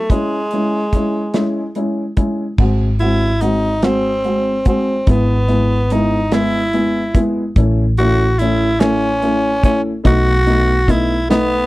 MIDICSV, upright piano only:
0, 0, Header, 1, 2, 480
1, 0, Start_track
1, 0, Tempo, 828729
1, 54, Time_signature, 6, 3, 24, 8
1, 6755, End_track
2, 0, Start_track
2, 0, Title_t, "Upright piano"
2, 0, Program_c, 0, 0
2, 60, Note_on_c, 0, 56, 68
2, 62, Note_on_c, 0, 61, 64
2, 62, Note_on_c, 0, 64, 74
2, 207, Note_off_c, 0, 56, 0
2, 208, Note_off_c, 0, 61, 0
2, 208, Note_off_c, 0, 64, 0
2, 308, Note_on_c, 0, 56, 54
2, 308, Note_on_c, 0, 61, 50
2, 312, Note_on_c, 0, 64, 61
2, 451, Note_off_c, 0, 56, 0
2, 452, Note_off_c, 0, 61, 0
2, 454, Note_off_c, 0, 64, 0
2, 543, Note_on_c, 0, 56, 53
2, 549, Note_on_c, 0, 64, 63
2, 550, Note_on_c, 0, 61, 50
2, 689, Note_off_c, 0, 56, 0
2, 692, Note_off_c, 0, 64, 0
2, 693, Note_off_c, 0, 61, 0
2, 777, Note_on_c, 0, 56, 68
2, 777, Note_on_c, 0, 61, 60
2, 782, Note_on_c, 0, 64, 71
2, 926, Note_off_c, 0, 56, 0
2, 926, Note_off_c, 0, 61, 0
2, 929, Note_off_c, 0, 64, 0
2, 1017, Note_on_c, 0, 56, 55
2, 1023, Note_on_c, 0, 64, 59
2, 1024, Note_on_c, 0, 61, 49
2, 1166, Note_off_c, 0, 56, 0
2, 1169, Note_off_c, 0, 64, 0
2, 1170, Note_off_c, 0, 61, 0
2, 1254, Note_on_c, 0, 56, 57
2, 1258, Note_on_c, 0, 61, 48
2, 1259, Note_on_c, 0, 64, 62
2, 1405, Note_off_c, 0, 56, 0
2, 1407, Note_off_c, 0, 61, 0
2, 1407, Note_off_c, 0, 64, 0
2, 1498, Note_on_c, 0, 56, 68
2, 1501, Note_on_c, 0, 60, 62
2, 1503, Note_on_c, 0, 66, 74
2, 1647, Note_off_c, 0, 56, 0
2, 1649, Note_off_c, 0, 60, 0
2, 1650, Note_off_c, 0, 66, 0
2, 1742, Note_on_c, 0, 56, 50
2, 1746, Note_on_c, 0, 60, 50
2, 1746, Note_on_c, 0, 66, 62
2, 1889, Note_off_c, 0, 56, 0
2, 1891, Note_off_c, 0, 66, 0
2, 1892, Note_off_c, 0, 60, 0
2, 1977, Note_on_c, 0, 56, 60
2, 1979, Note_on_c, 0, 66, 65
2, 1980, Note_on_c, 0, 60, 52
2, 2127, Note_off_c, 0, 56, 0
2, 2128, Note_off_c, 0, 60, 0
2, 2128, Note_off_c, 0, 66, 0
2, 2218, Note_on_c, 0, 56, 71
2, 2220, Note_on_c, 0, 60, 65
2, 2222, Note_on_c, 0, 66, 77
2, 2367, Note_off_c, 0, 56, 0
2, 2369, Note_off_c, 0, 60, 0
2, 2370, Note_off_c, 0, 66, 0
2, 2457, Note_on_c, 0, 60, 52
2, 2459, Note_on_c, 0, 56, 53
2, 2459, Note_on_c, 0, 66, 62
2, 2607, Note_off_c, 0, 60, 0
2, 2608, Note_off_c, 0, 56, 0
2, 2608, Note_off_c, 0, 66, 0
2, 2696, Note_on_c, 0, 56, 62
2, 2697, Note_on_c, 0, 60, 54
2, 2700, Note_on_c, 0, 66, 65
2, 2847, Note_off_c, 0, 56, 0
2, 2848, Note_off_c, 0, 60, 0
2, 2849, Note_off_c, 0, 66, 0
2, 2938, Note_on_c, 0, 56, 67
2, 2939, Note_on_c, 0, 64, 78
2, 2940, Note_on_c, 0, 59, 66
2, 3088, Note_off_c, 0, 56, 0
2, 3089, Note_off_c, 0, 59, 0
2, 3089, Note_off_c, 0, 64, 0
2, 3173, Note_on_c, 0, 56, 55
2, 3176, Note_on_c, 0, 64, 65
2, 3177, Note_on_c, 0, 59, 51
2, 3325, Note_off_c, 0, 56, 0
2, 3327, Note_off_c, 0, 59, 0
2, 3327, Note_off_c, 0, 64, 0
2, 3426, Note_on_c, 0, 56, 60
2, 3427, Note_on_c, 0, 59, 55
2, 3430, Note_on_c, 0, 64, 68
2, 3572, Note_off_c, 0, 56, 0
2, 3572, Note_off_c, 0, 59, 0
2, 3574, Note_off_c, 0, 64, 0
2, 3659, Note_on_c, 0, 56, 73
2, 3662, Note_on_c, 0, 59, 68
2, 3664, Note_on_c, 0, 64, 78
2, 3808, Note_off_c, 0, 56, 0
2, 3810, Note_off_c, 0, 59, 0
2, 3811, Note_off_c, 0, 64, 0
2, 3901, Note_on_c, 0, 56, 59
2, 3902, Note_on_c, 0, 59, 57
2, 3904, Note_on_c, 0, 64, 67
2, 4049, Note_off_c, 0, 56, 0
2, 4050, Note_off_c, 0, 59, 0
2, 4051, Note_off_c, 0, 64, 0
2, 4136, Note_on_c, 0, 56, 68
2, 4138, Note_on_c, 0, 59, 56
2, 4141, Note_on_c, 0, 64, 75
2, 4287, Note_off_c, 0, 56, 0
2, 4288, Note_off_c, 0, 59, 0
2, 4290, Note_off_c, 0, 64, 0
2, 4385, Note_on_c, 0, 57, 73
2, 4386, Note_on_c, 0, 61, 67
2, 4386, Note_on_c, 0, 64, 82
2, 4532, Note_off_c, 0, 57, 0
2, 4532, Note_off_c, 0, 61, 0
2, 4532, Note_off_c, 0, 64, 0
2, 4627, Note_on_c, 0, 57, 65
2, 4630, Note_on_c, 0, 64, 72
2, 4631, Note_on_c, 0, 61, 60
2, 4773, Note_off_c, 0, 57, 0
2, 4774, Note_off_c, 0, 64, 0
2, 4775, Note_off_c, 0, 61, 0
2, 4870, Note_on_c, 0, 57, 67
2, 4871, Note_on_c, 0, 61, 61
2, 4872, Note_on_c, 0, 64, 66
2, 5014, Note_off_c, 0, 57, 0
2, 5015, Note_off_c, 0, 61, 0
2, 5015, Note_off_c, 0, 64, 0
2, 5102, Note_on_c, 0, 57, 84
2, 5102, Note_on_c, 0, 61, 70
2, 5106, Note_on_c, 0, 64, 87
2, 5250, Note_off_c, 0, 57, 0
2, 5250, Note_off_c, 0, 61, 0
2, 5252, Note_off_c, 0, 64, 0
2, 5341, Note_on_c, 0, 57, 64
2, 5343, Note_on_c, 0, 64, 69
2, 5344, Note_on_c, 0, 61, 57
2, 5490, Note_off_c, 0, 57, 0
2, 5491, Note_off_c, 0, 61, 0
2, 5491, Note_off_c, 0, 64, 0
2, 5581, Note_on_c, 0, 57, 66
2, 5582, Note_on_c, 0, 61, 61
2, 5582, Note_on_c, 0, 64, 77
2, 5730, Note_off_c, 0, 57, 0
2, 5730, Note_off_c, 0, 61, 0
2, 5730, Note_off_c, 0, 64, 0
2, 5813, Note_on_c, 0, 57, 78
2, 5815, Note_on_c, 0, 59, 68
2, 5818, Note_on_c, 0, 63, 92
2, 5966, Note_off_c, 0, 57, 0
2, 5967, Note_off_c, 0, 59, 0
2, 5968, Note_off_c, 0, 63, 0
2, 6059, Note_on_c, 0, 57, 65
2, 6062, Note_on_c, 0, 59, 58
2, 6063, Note_on_c, 0, 63, 67
2, 6208, Note_off_c, 0, 57, 0
2, 6210, Note_off_c, 0, 59, 0
2, 6210, Note_off_c, 0, 63, 0
2, 6302, Note_on_c, 0, 57, 62
2, 6303, Note_on_c, 0, 59, 62
2, 6303, Note_on_c, 0, 63, 75
2, 6450, Note_off_c, 0, 57, 0
2, 6450, Note_off_c, 0, 59, 0
2, 6451, Note_off_c, 0, 63, 0
2, 6541, Note_on_c, 0, 57, 82
2, 6542, Note_on_c, 0, 59, 74
2, 6545, Note_on_c, 0, 63, 91
2, 6689, Note_off_c, 0, 57, 0
2, 6690, Note_off_c, 0, 59, 0
2, 6692, Note_off_c, 0, 63, 0
2, 6755, End_track
0, 0, End_of_file